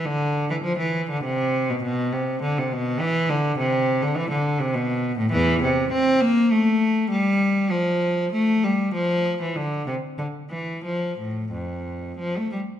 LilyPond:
\new Staff \with { instrumentName = "Cello" } { \clef bass \time 3/4 \key c \major \tempo 4 = 101 d8. e16 f16 e8 d16 c8. b,16 | b,8 c8 d16 c16 b,8 e8 d8 | c8. d16 e16 d8 c16 b,8. a,16 | \key f \major <e, e>8 c8 c'8 bes8 a4 |
g4 f4 a8 g8 | f8. e16 d8 c8 d8 e8 | f8 a,8 f,4 f16 a16 g8 | }